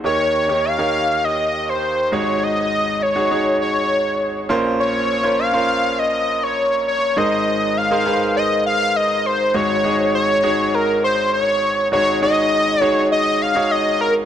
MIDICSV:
0, 0, Header, 1, 3, 480
1, 0, Start_track
1, 0, Tempo, 594059
1, 35, Time_signature, 4, 2, 24, 8
1, 11516, End_track
2, 0, Start_track
2, 0, Title_t, "Analog synth lead"
2, 0, Program_c, 0, 81
2, 44, Note_on_c, 0, 73, 101
2, 523, Note_on_c, 0, 77, 108
2, 535, Note_off_c, 0, 73, 0
2, 1006, Note_on_c, 0, 75, 100
2, 1018, Note_off_c, 0, 77, 0
2, 1366, Note_on_c, 0, 72, 89
2, 1379, Note_off_c, 0, 75, 0
2, 1726, Note_on_c, 0, 73, 87
2, 1739, Note_off_c, 0, 72, 0
2, 1967, Note_on_c, 0, 75, 101
2, 1979, Note_off_c, 0, 73, 0
2, 2443, Note_on_c, 0, 73, 91
2, 2455, Note_off_c, 0, 75, 0
2, 2919, Note_off_c, 0, 73, 0
2, 2922, Note_on_c, 0, 73, 86
2, 3606, Note_off_c, 0, 73, 0
2, 3878, Note_on_c, 0, 73, 98
2, 4356, Note_on_c, 0, 77, 108
2, 4368, Note_off_c, 0, 73, 0
2, 4838, Note_on_c, 0, 75, 100
2, 4850, Note_off_c, 0, 77, 0
2, 5197, Note_on_c, 0, 73, 91
2, 5210, Note_off_c, 0, 75, 0
2, 5554, Note_off_c, 0, 73, 0
2, 5558, Note_on_c, 0, 73, 92
2, 5798, Note_on_c, 0, 75, 95
2, 5811, Note_off_c, 0, 73, 0
2, 6281, Note_on_c, 0, 77, 102
2, 6293, Note_off_c, 0, 75, 0
2, 6755, Note_off_c, 0, 77, 0
2, 6760, Note_on_c, 0, 75, 86
2, 6981, Note_off_c, 0, 75, 0
2, 7000, Note_on_c, 0, 77, 110
2, 7241, Note_on_c, 0, 75, 103
2, 7254, Note_off_c, 0, 77, 0
2, 7482, Note_on_c, 0, 72, 103
2, 7494, Note_off_c, 0, 75, 0
2, 7722, Note_on_c, 0, 73, 110
2, 7734, Note_off_c, 0, 72, 0
2, 8195, Note_off_c, 0, 73, 0
2, 8200, Note_on_c, 0, 73, 108
2, 8682, Note_on_c, 0, 70, 100
2, 8694, Note_off_c, 0, 73, 0
2, 8915, Note_off_c, 0, 70, 0
2, 8920, Note_on_c, 0, 72, 94
2, 9141, Note_off_c, 0, 72, 0
2, 9159, Note_on_c, 0, 73, 95
2, 9604, Note_off_c, 0, 73, 0
2, 9638, Note_on_c, 0, 73, 105
2, 9860, Note_off_c, 0, 73, 0
2, 9878, Note_on_c, 0, 75, 118
2, 10371, Note_off_c, 0, 75, 0
2, 10371, Note_on_c, 0, 73, 118
2, 10564, Note_off_c, 0, 73, 0
2, 10600, Note_on_c, 0, 75, 105
2, 10842, Note_on_c, 0, 77, 100
2, 10855, Note_off_c, 0, 75, 0
2, 11079, Note_on_c, 0, 75, 103
2, 11092, Note_off_c, 0, 77, 0
2, 11315, Note_off_c, 0, 75, 0
2, 11320, Note_on_c, 0, 70, 91
2, 11427, Note_off_c, 0, 70, 0
2, 11516, End_track
3, 0, Start_track
3, 0, Title_t, "Grand piano"
3, 0, Program_c, 1, 0
3, 0, Control_c, 1, 64, 127
3, 31, Note_on_c, 1, 63, 67
3, 35, Note_on_c, 1, 67, 62
3, 36, Note_on_c, 1, 39, 61
3, 36, Note_on_c, 1, 51, 62
3, 37, Note_on_c, 1, 70, 61
3, 41, Note_on_c, 1, 73, 77
3, 46, Control_c, 1, 64, 0
3, 189, Control_c, 1, 64, 127
3, 317, Note_off_c, 1, 63, 0
3, 319, Note_off_c, 1, 67, 0
3, 320, Note_off_c, 1, 70, 0
3, 322, Note_off_c, 1, 73, 0
3, 390, Note_on_c, 1, 63, 69
3, 394, Note_on_c, 1, 67, 63
3, 397, Note_on_c, 1, 70, 62
3, 400, Note_on_c, 1, 73, 76
3, 582, Note_off_c, 1, 63, 0
3, 584, Note_off_c, 1, 67, 0
3, 585, Note_off_c, 1, 70, 0
3, 587, Note_off_c, 1, 73, 0
3, 632, Note_on_c, 1, 63, 72
3, 635, Note_on_c, 1, 67, 64
3, 637, Note_on_c, 1, 70, 63
3, 641, Note_on_c, 1, 73, 80
3, 1391, Note_off_c, 1, 63, 0
3, 1392, Note_off_c, 1, 67, 0
3, 1394, Note_off_c, 1, 70, 0
3, 1396, Note_off_c, 1, 73, 0
3, 1683, Note_off_c, 1, 39, 0
3, 1683, Note_off_c, 1, 51, 0
3, 1711, Note_on_c, 1, 63, 77
3, 1714, Note_on_c, 1, 66, 70
3, 1715, Note_on_c, 1, 44, 58
3, 1716, Note_on_c, 1, 32, 58
3, 1717, Note_on_c, 1, 68, 66
3, 1720, Note_on_c, 1, 73, 84
3, 1725, Control_c, 1, 64, 0
3, 1851, Control_c, 1, 64, 127
3, 2384, Note_off_c, 1, 63, 0
3, 2386, Note_off_c, 1, 66, 0
3, 2388, Note_off_c, 1, 68, 0
3, 2389, Note_off_c, 1, 73, 0
3, 2549, Note_on_c, 1, 63, 69
3, 2552, Note_on_c, 1, 66, 65
3, 2555, Note_on_c, 1, 68, 65
3, 2559, Note_on_c, 1, 73, 81
3, 2646, Note_off_c, 1, 63, 0
3, 2648, Note_off_c, 1, 66, 0
3, 2649, Note_off_c, 1, 68, 0
3, 2652, Note_off_c, 1, 73, 0
3, 2671, Note_on_c, 1, 63, 76
3, 2674, Note_on_c, 1, 66, 68
3, 2677, Note_on_c, 1, 68, 64
3, 2680, Note_on_c, 1, 73, 82
3, 3430, Note_off_c, 1, 63, 0
3, 3432, Note_off_c, 1, 66, 0
3, 3434, Note_off_c, 1, 68, 0
3, 3435, Note_off_c, 1, 73, 0
3, 3602, Note_off_c, 1, 44, 0
3, 3603, Note_off_c, 1, 32, 0
3, 3628, Note_on_c, 1, 61, 88
3, 3631, Note_on_c, 1, 65, 80
3, 3633, Note_on_c, 1, 34, 73
3, 3633, Note_on_c, 1, 46, 73
3, 3635, Note_on_c, 1, 70, 80
3, 3638, Note_on_c, 1, 72, 103
3, 3646, Control_c, 1, 64, 0
3, 3763, Control_c, 1, 64, 127
3, 4111, Note_off_c, 1, 61, 0
3, 4112, Note_off_c, 1, 65, 0
3, 4115, Note_off_c, 1, 70, 0
3, 4116, Note_off_c, 1, 72, 0
3, 4227, Note_on_c, 1, 61, 72
3, 4230, Note_on_c, 1, 65, 66
3, 4234, Note_on_c, 1, 70, 64
3, 4238, Note_on_c, 1, 72, 81
3, 4420, Note_off_c, 1, 61, 0
3, 4422, Note_off_c, 1, 65, 0
3, 4424, Note_off_c, 1, 70, 0
3, 4426, Note_off_c, 1, 72, 0
3, 4467, Note_on_c, 1, 61, 69
3, 4470, Note_on_c, 1, 65, 66
3, 4473, Note_on_c, 1, 70, 68
3, 4477, Note_on_c, 1, 72, 85
3, 5228, Note_off_c, 1, 61, 0
3, 5230, Note_off_c, 1, 65, 0
3, 5232, Note_off_c, 1, 70, 0
3, 5233, Note_off_c, 1, 72, 0
3, 5521, Note_off_c, 1, 34, 0
3, 5521, Note_off_c, 1, 46, 0
3, 5788, Note_on_c, 1, 63, 71
3, 5791, Note_on_c, 1, 68, 67
3, 5793, Note_on_c, 1, 32, 59
3, 5793, Note_on_c, 1, 44, 65
3, 5794, Note_on_c, 1, 70, 66
3, 5798, Note_on_c, 1, 72, 82
3, 5806, Control_c, 1, 64, 0
3, 5935, Control_c, 1, 64, 127
3, 6265, Note_off_c, 1, 63, 0
3, 6267, Note_off_c, 1, 68, 0
3, 6268, Note_off_c, 1, 70, 0
3, 6270, Note_off_c, 1, 72, 0
3, 6389, Note_on_c, 1, 63, 74
3, 6393, Note_on_c, 1, 68, 71
3, 6396, Note_on_c, 1, 70, 69
3, 6399, Note_on_c, 1, 72, 84
3, 6487, Note_off_c, 1, 63, 0
3, 6489, Note_off_c, 1, 68, 0
3, 6490, Note_off_c, 1, 70, 0
3, 6492, Note_off_c, 1, 72, 0
3, 6508, Note_on_c, 1, 63, 77
3, 6512, Note_on_c, 1, 68, 67
3, 6515, Note_on_c, 1, 70, 69
3, 6518, Note_on_c, 1, 71, 67
3, 6569, Note_off_c, 1, 71, 0
3, 6570, Note_on_c, 1, 72, 80
3, 7269, Note_off_c, 1, 63, 0
3, 7271, Note_off_c, 1, 68, 0
3, 7273, Note_off_c, 1, 70, 0
3, 7300, Note_off_c, 1, 72, 0
3, 7681, Note_off_c, 1, 44, 0
3, 7682, Note_off_c, 1, 32, 0
3, 7707, Note_on_c, 1, 63, 71
3, 7711, Note_on_c, 1, 66, 66
3, 7712, Note_on_c, 1, 44, 63
3, 7713, Note_on_c, 1, 32, 67
3, 7714, Note_on_c, 1, 68, 66
3, 7717, Note_on_c, 1, 73, 83
3, 7726, Control_c, 1, 64, 0
3, 7855, Control_c, 1, 64, 127
3, 7900, Note_off_c, 1, 63, 0
3, 7902, Note_off_c, 1, 66, 0
3, 7904, Note_off_c, 1, 68, 0
3, 7905, Note_off_c, 1, 73, 0
3, 7948, Note_on_c, 1, 63, 71
3, 7952, Note_on_c, 1, 66, 67
3, 7955, Note_on_c, 1, 68, 69
3, 7959, Note_on_c, 1, 75, 80
3, 8330, Note_off_c, 1, 63, 0
3, 8332, Note_off_c, 1, 66, 0
3, 8333, Note_off_c, 1, 68, 0
3, 8335, Note_off_c, 1, 75, 0
3, 8428, Note_on_c, 1, 63, 80
3, 8430, Note_on_c, 1, 66, 69
3, 8434, Note_on_c, 1, 68, 70
3, 8437, Note_on_c, 1, 73, 85
3, 9189, Note_off_c, 1, 63, 0
3, 9190, Note_off_c, 1, 66, 0
3, 9192, Note_off_c, 1, 68, 0
3, 9194, Note_off_c, 1, 73, 0
3, 9601, Note_off_c, 1, 32, 0
3, 9601, Note_off_c, 1, 44, 0
3, 9629, Note_on_c, 1, 63, 75
3, 9631, Note_on_c, 1, 66, 66
3, 9633, Note_on_c, 1, 32, 62
3, 9633, Note_on_c, 1, 44, 62
3, 9635, Note_on_c, 1, 68, 67
3, 9638, Note_on_c, 1, 73, 84
3, 9821, Note_off_c, 1, 63, 0
3, 9822, Note_off_c, 1, 66, 0
3, 9824, Note_off_c, 1, 68, 0
3, 9826, Note_off_c, 1, 73, 0
3, 9870, Note_on_c, 1, 63, 73
3, 9873, Note_on_c, 1, 66, 65
3, 9876, Note_on_c, 1, 68, 67
3, 9879, Note_on_c, 1, 73, 79
3, 10251, Note_off_c, 1, 63, 0
3, 10253, Note_off_c, 1, 66, 0
3, 10254, Note_off_c, 1, 68, 0
3, 10256, Note_off_c, 1, 73, 0
3, 10350, Note_on_c, 1, 63, 75
3, 10352, Note_on_c, 1, 66, 71
3, 10356, Note_on_c, 1, 68, 73
3, 10359, Note_on_c, 1, 73, 87
3, 10826, Note_off_c, 1, 63, 0
3, 10827, Note_off_c, 1, 66, 0
3, 10829, Note_off_c, 1, 68, 0
3, 10831, Note_off_c, 1, 73, 0
3, 10949, Note_on_c, 1, 63, 74
3, 10952, Note_on_c, 1, 66, 69
3, 10955, Note_on_c, 1, 68, 69
3, 10958, Note_on_c, 1, 73, 79
3, 11425, Note_off_c, 1, 63, 0
3, 11427, Note_off_c, 1, 66, 0
3, 11428, Note_off_c, 1, 68, 0
3, 11430, Note_off_c, 1, 73, 0
3, 11516, Note_off_c, 1, 32, 0
3, 11516, Note_off_c, 1, 44, 0
3, 11516, End_track
0, 0, End_of_file